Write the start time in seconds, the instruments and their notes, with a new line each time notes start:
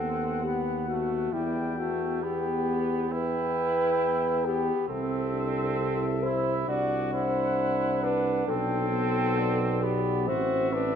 Already playing: tuba D#2, euphonium B3, trumpet C4 F#5, french horn A4
0.44 trumpet B3, french horn G4
0.88 trumpet A3, french horn F#4
1.33 tuba E2, trumpet G3 G5, euphonium B3, french horn E4
1.77 trumpet A3, french horn F#4
2.22 euphonium B3, trumpet B3 G5, french horn G4
3.11 euphonium B3, trumpet E4 G5, french horn B4
4.46 trumpet B3, french horn G4
4.88 tuba C2, trumpet C4 E5, euphonium C4, french horn A4
5.33 euphonium D4
5.78 euphonium E4
6.22 euphonium E4, trumpet E4, french horn C5
6.67 tuba C2, euphonium D4, trumpet F#4 F#5, french horn D5
7.14 trumpet E4, french horn C5
8.03 trumpet D4, french horn B4
8.47 tuba B1, trumpet C4 G5, euphonium D4, french horn A4
8.93 euphonium B3
9.38 trumpet D5
9.83 trumpet B3, french horn G4
10.27 tuba A1, euphonium C4, trumpet F#4 E5, french horn C5
10.72 trumpet D4, french horn B4